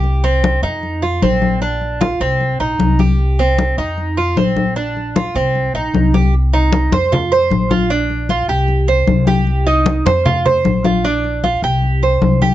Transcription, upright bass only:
\new Staff \with { instrumentName = "Upright bass" } { \clef bass \time 4/4 \key c \minor \tempo 4 = 153 c,4. f,4. bes,,4~ | bes,,4. c,4 bes,,8 c,4~ | c,4. f,4. bes,,4~ | bes,,4. c,4 bes,,8 c,4~ |
c,4. f,4. bes,,4~ | bes,,4. c,4. c,4~ | c,4. f,4. bes,,4~ | bes,,4. c,4. c,4 | }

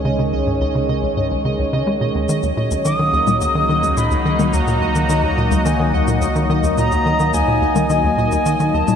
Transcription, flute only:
\new Staff \with { instrumentName = "Flute" } { \time 4/4 \key dis \phrygian \tempo 4 = 107 r1 | r4 dis'''4 dis'''4 b''4 | ais''2 gis''8 fis''4 r8 | ais''4 gis''4 gis''4. a''8 | }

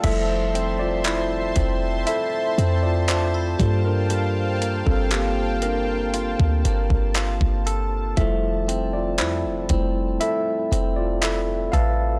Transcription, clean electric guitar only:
\new Staff \with { instrumentName = "Clean electric guitar" } { \time 4/4 \key f \major \tempo 4 = 59 f8 c'8 e'8 c'8 e'8 c'8 d'16 e'16 g8 | g8 bes8 f'8 bes8 f'8 bes8 f'8 a'8 | f8 c'8 e'8 c'8 e'8 c'8 e'8 a'8 | }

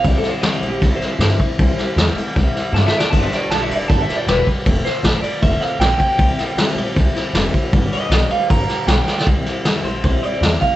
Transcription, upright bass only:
\new Staff \with { instrumentName = "Upright bass" } { \clef bass \time 4/4 \key c \major \tempo 4 = 156 c,8 r8 e,8 bes,,8 c,8 r8 g,8 r8 | c,8 r8 e,8 r8 c,8 r8 g,8 r8 | g,,8 r8 b,,8 f,,8 g,,8 r8 e,,8 r8 | f,,8 r8 a,,8 r8 f,,8 r8 bes,,8 r8 |
c,8 r8 e,8 bes,,8 c,8 r8 f,,8 r8 | g,,8 r8 b,,8 r8 g,,8 r8 b,,8 r8 | c,8 r8 e,8 bes,,8 c,8 r8 e,8 r8 | }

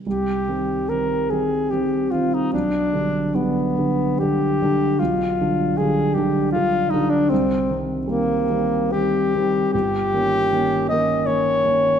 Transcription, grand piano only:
\new Staff \with { instrumentName = "Grand piano" } { \clef bass \time 3/4 \key c \minor \tempo 4 = 76 c,8 <ees g c'>8 <ees g c'>8 <ees g c'>8 <ees g c'>8 <ees g c'>8 | b,,8 <d g d'>8 <d g d'>8 <d g d'>8 <d g d'>8 <d g d'>8 | b,,8 <d g d'>8 <d g d'>8 <d g d'>8 <d g d'>8 <d g d'>8 | c,8 <ees g c'>8 <ees g c'>8 <ees g c'>8 <ees g c'>8 <ees g c'>8 |
\key dis \phrygian g,,8 <dis ais cis'>8 <dis ais cis'>8 <dis ais cis'>8 <dis ais cis'>8 <dis ais cis'>8 | }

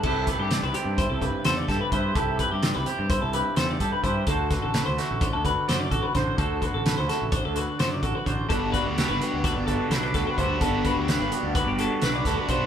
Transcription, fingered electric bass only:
\new Staff \with { instrumentName = "Fingered electric bass" } { \clef bass \time 9/8 \key c \lydian \tempo 4. = 85 c,8. g,8 c,16 r16 g,8 c,8 r16 e,8 g,16 r16 g,8 | c,8. g,8 c,16 r16 g,8 c,8 r16 e,8 g,16 r16 g,8 | d,8. a,,8 d,16 r16 a,,8 d,8 r16 fis,8 a,,16 r16 a,,8 | d,8. a,,8 d,16 r16 a,,8 d,8 r16 fis,8 a,,16 r16 a,,8 |
g,,8. d,8 g,,16 r16 d,8 g,,8 r16 b,,8 d,16 r16 d,8 | g,,8. d,8 g,,16 r16 d,8 g,,8 r16 b,,8 d,16 r16 b,,8 | }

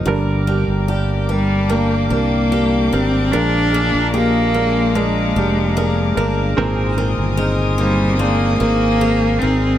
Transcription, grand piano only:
<<
  \new Staff \with { instrumentName = "Grand piano" } { \time 4/4 \key g \phrygian \tempo 4 = 74 <g d' bes'>8 <g d' g'>8 <g d' g'>8 <g d' bes'>8 <g d' bes'>8 <g d' bes'>8 <g d' bes'>8 <g d' bes'>8 | <aes d' bes'>8 <aes d' aes'>8 <aes d' g'>8 <aes d' bes'>8 <aes d' bes'>8 <aes d' g'>8 <aes d' bes'>8 <aes d' bes'>8 | <aes c' bes'>8 <aes c' bes'>8 <aes c' ees'>8 <bes c' c''>8 <aes c' d'>8 <aes c' bes'>8 <aes c' aes'>8 <aes c' bes'>8 | }
  \new Staff \with { instrumentName = "Grand piano" } { \clef bass \time 4/4 \key g \phrygian <g, d>4. r2 r8 | <bes, f>4. r2 r8 | <bes, ees>4. r2 r8 | }
>>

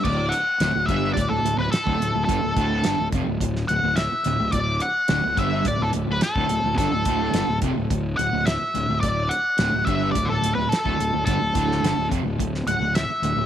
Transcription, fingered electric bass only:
\new Staff \with { instrumentName = "Fingered electric bass" } { \clef bass \time 4/4 \key d \major \tempo 4 = 107 d,,8 r8 d,,16 d,,16 g,,8 d,,16 d,,16 d,,16 d,,16 r16 d,,16 d,,16 d,,16 | g,,16 d,,16 d,,8 g,,16 d,,16 f,,16 d,,16 d,,8 d,,16 d,,8 r16 d,,16 d,,16 | d,,8 r8 d,,16 d,,16 g,,8 d,,16 d,,16 d,,16 d,,16 r16 d,,16 d,,16 d,,16 | g,,16 d,,16 d,,8 g,,16 d,,16 f,,16 d,,16 d,,8 d,,16 d,,8 r16 d,,16 d,,16 |
d,,8 r8 d,,16 d,,16 g,,8 d,,16 d,,16 d,,16 d,,16 r16 d,,16 d,,16 d,,16 | g,,16 d,,16 d,,8 g,,16 d,,16 f,,16 d,,16 d,,8 d,,16 d,,8 r16 d,,16 d,,16 | }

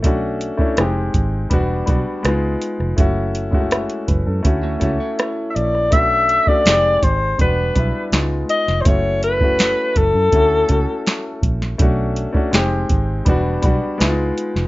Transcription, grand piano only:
\new Staff \with { instrumentName = "Grand piano" } { \time 4/4 \key b \minor \tempo 4 = 82 << { r1 | r4 e''8 b'16 <cis' a'>8 r4. r16 | r1 | r1 |
r1 | } \\ { <a cis' d' fis'>8. <a cis' d' e'>16 <aes c' ees' g'>8. r16 <g b d' fis'>8 <g b d' fis'>8 <gis b dis' eis'>8. r16 | <a cis' e' fis'>8. <gis a cis' e' fis'>4~ <gis a cis' e' fis'>16 <a cis' e' fis'>8 <a cis' e' fis'>4~ <a cis' e' fis'>16 r16 | <a cis' d' fis'>8. <a cis' d' fis'>16 <aes c' ees' g'>8. r16 <g b d' fis'>8 <g b d' e'>8 <gis b dis' eis'>8. r16 | <a cis' e' fis'>8. <a cis' e' fis'>4~ <a cis' e' fis'>16 <a cis' e' fis'>8 <a cis' e' fis'>4~ <a cis' e' fis'>16 r16 |
<a cis' d' fis'>8. <a cis' d' fis'>16 <aes c' ees' g'>8. r16 <g b d' fis'>8 <g b d' fis'>8 <gis b dis' e' eis'>8. r16 | } >> }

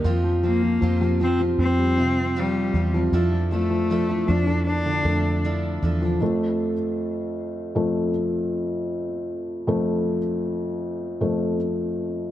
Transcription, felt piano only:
\new Staff \with { instrumentName = "Felt piano" } { \clef bass \time 4/4 \key f \major \tempo 4 = 78 f'16 f16 f16 f16 f16 f16 f16 f16 c'16 g16 c4~ c16 f16 | f'16 f16 f16 f16 f16 f16 f16 f16 d'16 d16 a4~ a16 f16 | <f, f a>8. r4 r16 <f, f a>8 r4. | r8 <f, f a>8. r4 r16 <f, f a>8 r4 | }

